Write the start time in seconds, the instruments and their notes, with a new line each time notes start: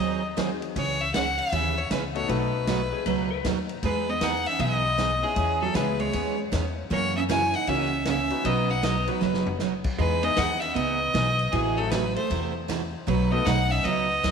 Already playing: steel-string acoustic guitar D#3, fiddle D#5
0.00 upright bass D#2, steel-string acoustic guitar F#3 C4 D#4 G#4
0.37 steel-string acoustic guitar D#3 F#3 C4 D#4 G#4, upright piano G#3 C4 D#4 F#4 G#4, kick, snare, hi-hat pedal, ride
0.62 ride
0.76 upright bass C#2, steel-string acoustic guitar C#3 E3 B3 C#4 G#4, fiddle C#5, kick, ride
1.01 fiddle E5
1.14 steel-string acoustic guitar C#3 E3 B3 C#4 G#4, fiddle F#5, kick, snare, hi-hat pedal, ride
1.38 fiddle E5, ride
1.52 upright bass D#2, steel-string acoustic guitar C#3 E3 B3 C#4 G#4, kick, ride
1.78 fiddle C#5
1.90 upright bass C#2, steel-string acoustic guitar C#3 E3 B3 C#4 G#4, fiddle B4, kick, snare, hi-hat pedal, ride
2.14 upright piano A3 B3 D#4 F#4 A4, fiddle C#5, ride
2.28 upright bass B1, steel-string acoustic guitar B2 F#3 A3 D#4 F#4, upright piano A3 B3 D#4 F#4 A4, fiddle B4, kick, ride
2.67 steel-string acoustic guitar B2 F#3 A3 D#4 F#4, kick, snare, hi-hat pedal, ride
2.93 electric slide guitar G#4
3.06 upright bass C#2, steel-string acoustic guitar B2 F#3 A3 D#4 F#4, electric slide guitar B4, kick, ride
3.31 electric slide guitar B4
3.44 upright bass D#2, steel-string acoustic guitar B2 F#3 A3 D#4 F#4, kick, snare, hi-hat pedal, ride
3.69 ride
3.83 upright bass E2, steel-string acoustic guitar E3 B3 D#4 G#4, hollow-body jazz guitar G#3, fiddle B4, kick, ride
4.09 hollow-body jazz guitar B3, fiddle D#5
4.21 steel-string acoustic guitar E3 B3 D#4 G#4, hollow-body jazz guitar D#4, fiddle F#5, kick, snare, hi-hat pedal, ride
4.46 hollow-body jazz guitar C#4, fiddle E5, ride
4.59 upright bass B1, steel-string acoustic guitar E3 B3 D#4 G#4, hollow-body jazz guitar C4, fiddle E5, kick, ride
4.71 hollow-body jazz guitar B3, fiddle D#5
4.97 steel-string acoustic guitar E3 B3 D#4 G#4, kick, snare, hi-hat pedal, ride
5.22 hollow-body jazz guitar E3, upright piano G#3 B3 C#4 E4 G#4, fiddle G#4
5.36 upright bass E2, steel-string acoustic guitar E3 B3 C#4 G#4, kick, ride
5.62 hollow-body jazz guitar F#3, fiddle A4
5.74 upright bass C#2, steel-string acoustic guitar E3 B3 C#4 G#4, upright piano G#3 B3 C#4 E4 G#4, hollow-body jazz guitar G#3, fiddle B4, kick, snare, hi-hat pedal, ride
5.99 hollow-body jazz guitar G#3, fiddle C#5, ride
6.13 upright bass D#2, steel-string acoustic guitar E3 B3 C#4 G#4, kick, ride
6.52 upright bass E2, steel-string acoustic guitar E3 B3 C#4 G#4, kick, snare, hi-hat pedal, ride
6.90 upright bass F#2, steel-string acoustic guitar C#3 E3 A#3 C#4 F#4, hollow-body jazz guitar A#3, fiddle C#5, kick, ride
7.17 hollow-body jazz guitar C#4, fiddle E5
7.29 steel-string acoustic guitar C#3 E3 A#3 C#4 F#4, hollow-body jazz guitar E4, fiddle G#5, kick, snare, hi-hat pedal, ride
7.53 hollow-body jazz guitar D#4, fiddle F#5, ride
7.67 upright bass C#2, steel-string acoustic guitar C#3 E3 A#3 C#4 F#4, upright piano F#3 A#3 C#4 E4 F#4, hollow-body jazz guitar C#4, fiddle E5, kick, ride
8.05 steel-string acoustic guitar C#3 E3 A#3 C#4 F#4, hollow-body jazz guitar C#4, fiddle E5, kick, snare, hi-hat pedal, ride
8.30 upright piano F#3 B3 D#4 F#4 B4, ride
8.44 upright bass B1, steel-string acoustic guitar B2 F#3 B3 D#4 F#4, upright piano F#3 B3 D#4 F#4 B4, hollow-body jazz guitar B3, fiddle D#5, kick, ride
8.70 hollow-body jazz guitar D#4, fiddle F#5
8.83 steel-string acoustic guitar B2 F#3 B3 D#4 F#4, hollow-body jazz guitar B3, fiddle D#5, kick, snare, hi-hat pedal, ride
9.07 upright piano F#3 B3 D#4 F#4 B4, hollow-body jazz guitar F#3, fiddle B4, ride
9.21 upright bass F#1, steel-string acoustic guitar B2 F#3 B3 D#4 F#4, snare
9.34 snare
9.46 floor tom
9.59 steel-string acoustic guitar B2 F#3 B3 D#4 F#4, snare, hi-hat pedal
9.84 kick, crash
9.98 upright bass E2, steel-string acoustic guitar E3 B3 D#4 G#4, hollow-body jazz guitar G#3, fiddle B4, kick
10.23 upright piano G#3 B3 D#4 E4 G#4, hollow-body jazz guitar B3, fiddle D#5, ride
10.36 upright bass D#2, steel-string acoustic guitar E3 B3 D#4 G#4, hollow-body jazz guitar D#4, fiddle F#5, kick, snare, hi-hat pedal, ride
10.60 hollow-body jazz guitar C#4, fiddle E5, ride
10.75 upright bass C#2, steel-string acoustic guitar E3 B3 D#4 G#4, hollow-body jazz guitar B3, fiddle D#5, kick, ride
11.14 upright bass B1, steel-string acoustic guitar E3 B3 D#4 G#4, kick, snare, hi-hat pedal, ride
11.39 ride
11.52 upright bass A1, steel-string acoustic guitar C3 E3 A3 E4 F#4, hollow-body jazz guitar E3, fiddle G#4, kick, ride
11.77 hollow-body jazz guitar F#3, upright piano A3 C4 E4 F#4 A4, fiddle A4
11.90 steel-string acoustic guitar C3 E3 A3 E4 F#4, hollow-body jazz guitar F#3, fiddle B4, kick, snare, hi-hat pedal, ride
12.16 hollow-body jazz guitar A3, fiddle C5, ride
12.30 upright bass E2, steel-string acoustic guitar C3 E3 A3 E4 F#4, kick, ride
12.68 steel-string acoustic guitar C3 E3 A3 E4 F#4, kick, snare, hi-hat pedal, ride
13.07 upright bass B1, steel-string acoustic guitar B2 F#3 A3 D#4 F#4, hollow-body jazz guitar F#3, fiddle B4, kick, ride
13.31 upright piano A3 B3 D#4 F#4 A4, hollow-body jazz guitar B3, fiddle D#5
13.45 upright bass B1, steel-string acoustic guitar B2 F#3 A3 D#4 F#4, hollow-body jazz guitar D#4, fiddle F#5, kick, snare, hi-hat pedal, ride
13.69 hollow-body jazz guitar C#4, fiddle E5, ride
13.83 upright bass C#2, steel-string acoustic guitar B2 F#3 A3 D#4 F#4, hollow-body jazz guitar B3, fiddle D#5, kick, ride
14.23 upright bass D#2, steel-string acoustic guitar B2 F#3 A3 D#4 F#4, kick, snare, hi-hat pedal, ride